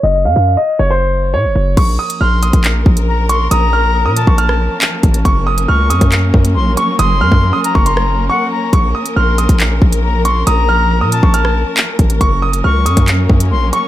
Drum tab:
CC |----------------|x---------------|----------------|----------------|
HH |----------------|x--x--xxx--x--x-|x-----x-x---x-xx|x--x--xxx--x--x-|
CP |----------------|--------x-------|------------x---|--------x-------|
SD |----------------|----------------|---------r------|----------------|
BD |----------------|o------o--o-----|-------o------o-|o------o--o-----|

CC |----------------|----------------|----------------|----------------|
HH |x-----x-x-------|x--x--xxx--x--x-|x-----x-x---x-xx|x--x--xxx--x--x-|
CP |----------------|--------x-------|------------x---|--------x-------|
SD |---------r------|----------------|---------r------|----------------|
BD |---o---o--------|o------o--o-----|-------o------o-|o------o--o-----|